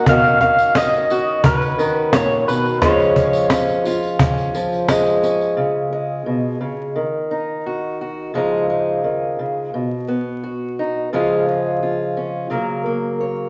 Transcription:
0.06 B2 D#3 C#4 F5, cajon bass
0.11 F#4
0.24 tambourine
0.41 D#3 F5, cajon bass, cajon slap
0.58 tambourine
0.75 C#4 D#5, cajon slap, tambourine
0.92 cajon slap, tambourine
1.10 F#4, tambourine
1.44 C#4 B4, cajon bass, tambourine
1.62 tambourine
1.78 D#3, cajon slap, tambourine
1.96 cajon slap
2.13 A#2 C#5, cajon slap, tambourine
2.48 B2 B4, cajon slap, tambourine
2.65 tambourine
2.82 C#3 F3 G#3 C#4 F4 C#5, cajon bass, cajon slap, tambourine
2.99 tambourine
3.16 F3, cajon bass, tambourine
3.33 tambourine
3.50 C#4, cajon slap, tambourine
3.68 cajon slap, tambourine
3.85 F4, tambourine
4.03 tambourine
4.19 C#4, cajon bass, tambourine
4.37 cajon slap, tambourine
4.54 F3, cajon slap, tambourine
4.72 tambourine
4.89 G#3, cajon slap, tambourine
5.07 tambourine
5.23 C#4, cajon slap, tambourine
5.41 tambourine
5.57 C#3
5.92 G#3
6.26 B2
6.61 C#3
6.96 D#3
7.31 D#4
7.66 F#4
8.01 F#4
8.34 C#3 F3 G#3 D#4 F4
8.70 G#3
9.04 D#3
9.39 C#3
9.74 B2
10.08 B3
10.44 F#4
10.79 D#4
11.13 C#3 F3 G#3 C#4 F4
11.48 G#3
11.83 F4
12.17 C#4
12.50 C#3 F#3 A#3 A#4
12.86 A#3
13.20 C#5

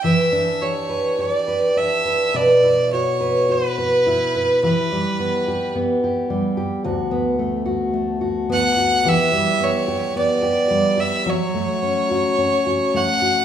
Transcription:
0.04 E3 B4 E5
0.32 D4
0.62 G4 C#5
0.89 B4
1.19 G4 C#5
1.31 D5
1.48 B4
1.76 D4 E5
2.05 B4
2.34 B2 B4 D5
2.63 E4
2.93 F#4 C#5
3.21 B4
3.49 F#4 B4
3.78 B4
4.07 E4
4.36 B4
4.63 E3 G4 B4
4.92 G3
5.19 B3
5.48 G4
5.75 B3
6.04 G4
6.30 G3
6.57 G4
6.84 D2 F#4
7.11 B3
7.39 A3
7.66 F#4
7.93 A3
8.21 F#4
8.49 B3 F#5
8.77 F#4
9.05 E3 G4 E5
9.33 G3
9.60 B3 C#5
9.88 G4
10.16 B3 D5
10.42 G4
10.70 G3
10.97 G4 E5
11.26 F#3 F#4 C#5
11.54 A3
11.82 C#4
12.11 F#4
12.38 C#4
12.66 F#4
12.94 A3 F#5
13.22 F#4

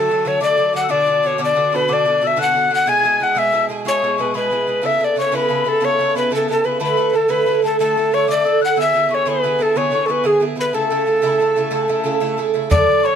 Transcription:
Already playing: A4 A5
0.09 D3 F#3 A3 F#4
0.25 D3 F#3 A3 F#4 C#5
0.40 D3 F#3 A3 F#4 D5 D6
0.58 D3 F#3 A3 F#4
0.73 D3 F#3 A3 F#4 F#5
0.83 E6
0.88 B2 D3 D4 F#4 D5 D6
1.06 B2 D3 D4 F#4
1.23 B2 D3 D4 F#4 C#5
1.38 B2 D3 D4 F#4 D6
1.44 D5
1.55 B2 D3 D4 F#4
1.72 B2 D3 D4 F#4 B4 B5
1.88 B2 D3 D4 F#4 D6
1.93 D5
2.05 B2 D3 D4 F#4
2.21 B2 D3 D4 F#4 E6
2.27 E5
2.36 B2 D3 D4 F#4 F#6
2.42 F#5
2.53 B2 D3 D4 F#4
2.70 B2 D3 D4 F#4
2.75 F#5
2.86 B2 G#3 E4 G#4 G#5 G#6
3.04 B2 G#3 E4 G#4
3.20 B2 G#3 E4 G#4 F#5 F#6
3.35 B2 G#3 E4 G#4 E5 E6
3.52 B2 G#3 E4 G#4
3.69 B2 G#3 E4 G#4
3.85 B2 G#3 E4 G#4 C#5 C#6
4.03 B2 G#3 E4 G#4
4.18 B2 G#3 E4 G#4 B4
4.34 B2 G#3 E4 G#4 B4 B5
4.50 B2 G#3 E4 G#4
4.67 B2 G#3 E4 G#4
4.82 C#3 B3 E4 A4 E6
4.86 E5
4.98 C#3 B3 E4 A4
5.04 D5
5.15 C#3 B3 E4 A4 C#6
5.20 C#5
5.31 C#3 B3 E4 A4 B4 B5
5.48 C#3 B3 E4 A4
5.64 C#3 B3 E4 A4
5.69 A4
5.80 C#3 B3 E4 A4
5.85 C#5 C#6
5.98 C#3 B3 E4 A4
6.15 C#3 B3 E4 A4 B4 B5
6.30 C#3 B3 E4 A4 A5
6.35 A4
6.48 C#3 B3 E4 A4 A5
6.64 C#3 B3 E4 A4 B4 B5
6.80 D3 A3 E4 A4 B5
6.85 B4
6.97 D3 A3 E4 A4
7.10 D3 A3 E4 B4 A5
7.14 A4
7.28 D3 A3 E4 A4 B4 B5
7.46 D3 A3 E4 A4
7.62 D3 A3 E4 A4 A5
7.79 D3 A3 E4 A4 A5
7.97 D3 A3 E4 A4
8.12 D3 A3 E4 A4 C#5 C#6
8.27 D3 A3 E4 A4 D5 D6
8.44 D3 A3 E4 A4 E6
8.60 D3 A3 E4 A4 F#6
8.65 F#5
8.76 D3 B3 E4 G#4 E6
8.81 E5
8.94 D3 B3 E4 G#4
9.09 D3 B3 E4 G#4 C#6
9.15 C#5
9.26 D3 B3 E4 G#4 B4 B5
9.43 D3 B3 E4 G#4
9.59 D3 B3 E4 G#4 A4 A5
9.76 D3 B3 E4 G#4 C#5 C#6
9.91 D3 B3 E4 G#4 C#6
10.06 D3 B3 E4 G#4 A4
10.11 B4
10.24 D3 B3 E4 G#4 G#5
10.40 D3 B3 E4 G#4
10.55 D3 B3 E4 G#4 B5
10.61 B4
10.73 C#3 A3 E4 A4 A5
10.90 C#3 A3 E4 A4
11.06 C#3 A3 E4 A4
11.22 C#3 A3 E4 A4
11.26 A5 B5
11.40 C#3 A3 E4 A4
11.56 C#3 A3 E4 A4
11.70 C#3 A3 E4 A4
11.82 G#5 A5
11.88 C#3 A3 E4 A4
12.04 C#3 A3 E4 A4
12.20 C#3 A3 E4 A4
12.37 C#3 A3 E4 A4
12.53 C#3 A3 E4 A4
12.70 D3 F#3 A3 A4 D5 D6, bodhran
12.81 bodhran
12.89 bodhran
13.03 D3 F#3 A3 A4 C#5 C#6, bodhran

